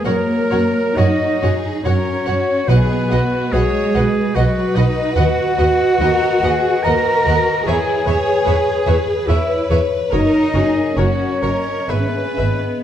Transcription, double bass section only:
\new Staff \with { instrumentName = "Double bass section" } { \clef bass \time 3/4 \key b \major \tempo 4 = 71 fis,8 fis,8 fis,8 fis,8 fis,8 fis,8 | b,,8 b,,8 b,,8 b,,8 b,,8 b,,8 | dis,8 dis,8 dis,8 dis,8 dis,8 dis,8 | e,8 e,8 e,8 e,8 e,8 e,8 |
fis,,8 fis,,8 fis,,8 fis,,8 gis,,8 gis,,8 | }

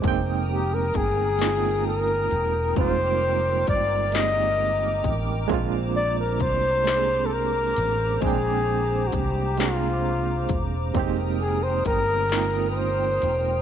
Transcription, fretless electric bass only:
\new Staff \with { instrumentName = "Fretless electric bass" } { \clef bass \time 6/8 \key f \dorian \tempo 4. = 44 f,,4 g,,4. e,,8 | f,,4 g,,4. a,,8 | bes,,4 c,4. a,,8 | bes,,4 c,4. e,,8 |
f,,4 g,,4. e,,8 | }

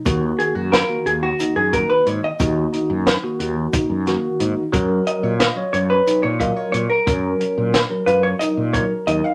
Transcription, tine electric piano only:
\new Staff \with { instrumentName = "Tine electric piano" } { \time 7/8 \key dis \minor \tempo 4 = 90 <dis ais fis'>4 r16 <dis ais fis'>4 r16 <dis ais dis'>8. r16 | <dis ais fis'>4 r16 <dis ais fis'>4 r16 <dis ais fis'>8. r16 | <fis cis' ais'>4 r16 <fis cis' cis''>4 r16 <fis cis' ais'>8. r16 | <fis cis' ais'>4 r16 <fis cis' ais'>4 r16 <fis cis' ais'>8. r16 | }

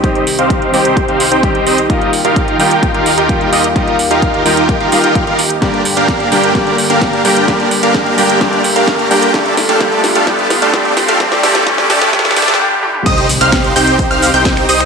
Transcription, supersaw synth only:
\new Staff \with { instrumentName = "Supersaw synth" } { \time 4/4 \key g \minor \tempo 4 = 129 <c' ees' g' c'' ees''>8 r16 <c' ees' g' c'' f''>8. <c' ees' g' c'' g''>8. <c' ees' g' c'' f''>8 <c' ees' g' c'' g''>8. <c' ees' g' c'' ees''>16 r16 | <ees' f' g' bes' ees''>8 r16 <ees' f' g' bes' f''>8. <ees' f' g' bes' g''>8. <ees' f' g' bes' f''>8 <ees' f' g' bes' g''>8. <ees' f' g' bes' ees''>16 r16 | <ees' f' g' bes' ees''>8 r16 <ees' f' g' bes' f''>8. <ees' f' g' bes' g''>8. <ees' f' g' bes' f''>16 <ees' f' g' bes' f''>16 <ees' f' g' bes' g''>8 <ees' f' g' bes' f''>16 r8 | <bes d' g' bes' d''>8 r16 <bes d' g' bes' f''>8. <bes d' g' bes' g''>8 <bes d' g' bes' d''>8 r16 <bes d' g' bes' f''>8. <bes d' g' bes' g''>8 |
<bes d' g' bes' d''>8 r16 <bes d' g' bes' f''>8. <bes d' g' bes' g''>8 <bes d' g' bes' d''>8 r16 <bes d' g' bes' f''>8. <bes d' g' bes' g''>8 | <a d' g' a' d''>8 r16 <a d' g' a' f''>16 <a d' g' a' d''>8 r16 <a d' g' a' f''>16 <a d' g' d''>8 r16 <a d' g' a' f''>16 <a d' g' a' d''>8 r16 <a d' g' a' f''>16 | <a d' g' a' d''>8 <a d' g' a' d''>8 <a d' g' a' d''>8 <a d' g' a' d''>8 <a d' d''>8 <a d' g' a' d''>8 r4 | <c' ees' g' c'' ees''>8 r16 <c' ees' g' c'' f''>8. <c' ees' g' c'' g''>8. <c' ees' g' c'' f''>8 <c' ees' g' c'' g''>8. <c' ees' g' c'' ees''>16 r16 | }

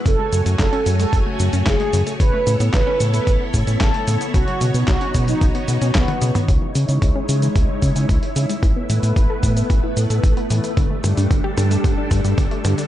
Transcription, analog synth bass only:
\new Staff \with { instrumentName = "Analog synth bass" } { \clef bass \time 4/4 \key a \lydian \tempo 4 = 112 fis,,16 r16 fis,16 fis,16 fis,,16 r16 fis,16 r16 fis,,16 r16 fis,16 fis,16 fis,,16 r16 fis,16 r16 | a,,16 r16 a,16 a,16 a,,16 r16 a,16 r16 a,,16 r16 a,16 a,16 a,,16 r16 a,16 r16 | b,,16 r16 b,16 b,16 b,,16 r16 b,16 r16 b,,16 r16 b,16 b,16 b,,16 r16 b,16 r16 | cis,16 r16 cis16 cis16 cis,16 r16 cis16 r16 cis,16 r16 cis16 cis16 cis,16 r16 cis16 r16 |
a,,16 r16 a,16 a,16 a,,16 r16 a,16 r16 a,,16 r16 a,16 a,16 a,,16 r16 a,16 r16 | g,,16 r16 g,16 g,16 g,,16 r16 g,16 r16 g,,16 r16 g,16 g,16 g,,16 r16 g,16 r16 | }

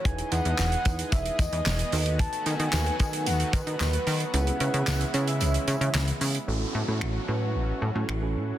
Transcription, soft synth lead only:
\new Staff \with { instrumentName = "Soft synth lead" } { \time 4/4 \key a \lydian \tempo 4 = 112 gis''8 fis''4. e''8 dis''4. | a''8 gis''4. fis''8 b'4. | fis''4.~ fis''16 e''4. r8. | r1 | }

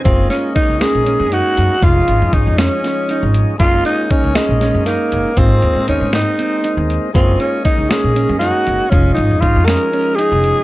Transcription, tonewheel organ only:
\new Staff \with { instrumentName = "Tonewheel organ" } { \time 7/8 \key ges \lydian \tempo 4 = 118 <aes bes des' ees'>2.~ <aes bes des' ees'>8 | <f aes des' ees'>2.~ <f aes des' ees'>8 | <aes bes des' ees'>2.~ <aes bes des' ees'>8 | <aes bes c' ees'>2.~ <aes bes c' ees'>8 |
<aes bes des' ees'>2.~ <aes bes des' ees'>8 | <f aes des' ees'>2.~ <f aes des' ees'>8 | }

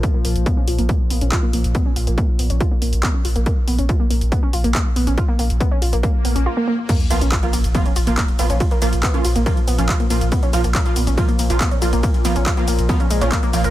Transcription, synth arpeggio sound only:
\new Staff \with { instrumentName = "Synth arpeggio sound" } { \time 4/4 \key bes \phrygian \tempo 4 = 140 f'16 bes16 bes16 r16 ces'16 des'16 f'16 bes16 bes16 r16 ces'16 des'16 f'16 bes16 bes16 r16 | ces'16 des'16 f'16 bes16 bes16 r16 ces'16 des'16 f'16 bes16 bes16 r16 ces'16 des'16 f'16 bes16 | bes16 r16 ces'16 des'16 f'16 bes16 bes16 r16 ces'16 des'16 f'16 bes16 r8 ces'16 des'16 | f'16 bes16 bes16 r16 ces'16 des'16 f'16 bes16 bes16 r16 ces'16 des'16 f'16 bes16 bes16 r16 |
bes16 r16 ces'16 des'16 f'16 bes16 bes16 r16 ces'16 des'16 f'16 bes16 bes16 r16 ces'16 des'16 | f'16 bes16 bes16 r16 ces'16 des'16 f'16 bes16 bes16 r16 ces'16 des'16 f'16 bes16 bes16 r16 | ces'16 des'16 f'16 bes16 bes16 r16 ces'16 des'16 f'16 bes16 bes16 r16 ces'16 des'16 f'16 bes16 | bes16 r16 ces'16 des'16 f'16 bes16 bes16 r16 ces'16 des'16 aes16 des'16 bes16 bes16 bes16 bes'16 | }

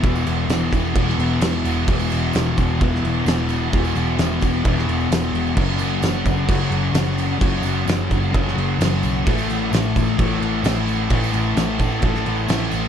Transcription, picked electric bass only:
\new Staff \with { instrumentName = "Picked electric bass" } { \clef bass \time 4/4 \key fis \dorian \tempo 4 = 130 e,,8 e,,8 e,,8 e,,8 e,,8 e,,8 e,,8 e,,8 | e,,4 e,,8 e,,8 e,,8 e,,8 e,,4 | e,,8 e,,8 e,,8 e,,8 e,,8 e,,8 e,,8 e,,8 | fis,,4 fis,,8 fis,,8 fis,,8 fis,,8 fis,,4 |
fis,,8 fis,,8 fis,,8 fis,,8 fis,,8 fis,,8 fis,,8 b,,8 | a,,4 a,,8 a,,8 a,,8 a,,8 a,,4 | a,,8 a,,8 a,,8 a,,8 a,,8 a,,8 a,,8 a,,8 | }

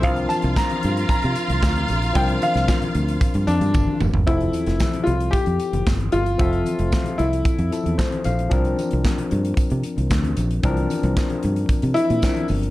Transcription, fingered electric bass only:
\new Staff \with { instrumentName = "Fingered electric bass" } { \clef bass \time 4/4 \key f \major \tempo 4 = 113 c,8 r16 c,16 r8 g,8 r16 c16 r16 c,16 d,8 bes,,8 | c,8 r16 c,16 r8 d,8 r16 g,16 f,16 g,16 g,,16 r16 f,,16 g,,16 | f,,8 r16 f,,16 r8 c,8 r16 f,16 r16 f,,16 g,,8 g,,8 | f,,8 r16 f,,16 r8 c,8 r16 f,16 r16 e,16 r8 bes,,8 |
c,8 r16 c,16 r8 g,8 r16 c16 r16 c,16 d,8 bes,,8 | c,8 r16 c,16 r8 g,8 r16 c16 r16 bes,16 r8 g,,8 | }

